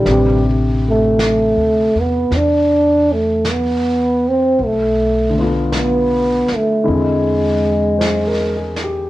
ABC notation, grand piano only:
X:1
M:4/4
L:1/16
Q:"Swing" 1/4=53
K:Am
V:1 name="Grand piano"
z16 | z12 ^B _B ^G =G |]
V:2 name="Grand piano"
[C,D,GB]16 | z2 [D,A,B,F]6 [D,^G,^B,E]8 |]